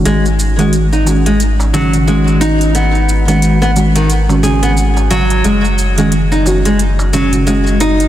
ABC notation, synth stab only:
X:1
M:4/4
L:1/16
Q:"Swing 16ths" 1/4=89
K:G#m
V:1 name="Synth stab"
[D,G,CF]3 [D,G,CF] z2 [D,G,CF] z3 [D,G,CF]2 [D,G,CF]4- | [D,G,CF]3 [D,G,CF]2 z [D,G,CF] z2 [D,G,CF] [D,G,CF]6 | z3 [D,G,CF] z2 [D,G,CF] z3 [D,G,CF]2 [D,G,CF]4 |]